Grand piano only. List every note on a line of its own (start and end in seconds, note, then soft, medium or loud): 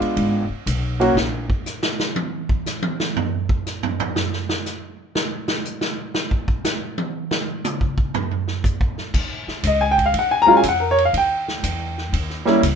0.00 0.43 G#3 medium
0.00 0.44 B3 medium
0.00 0.44 D4 medium
0.00 0.44 F4 medium
1.00 1.14 F#3 medium
1.00 1.14 A#3 medium
1.00 1.14 C#4 medium
1.00 1.14 F#4 medium
9.67 9.82 D#5 medium
9.81 9.97 G#5 medium
9.91 10.02 G5 medium
10.06 10.13 F5 medium
10.19 10.33 F#5 medium
10.31 10.48 G#5 medium
10.42 10.52 A#5 loud
10.47 10.61 F#3 medium
10.47 10.61 G#3 medium
10.47 10.62 C#4 medium
10.47 10.62 F4 medium
10.57 10.64 G#5 medium
10.69 10.83 F#5 medium
10.80 10.97 A#4 medium
10.91 11.02 C#5 medium
11.05 11.13 F5 medium
11.18 12.11 G5 medium
12.45 12.60 G3 medium
12.45 12.61 A#3 medium
12.45 12.61 C#4 medium
12.45 12.61 E4 medium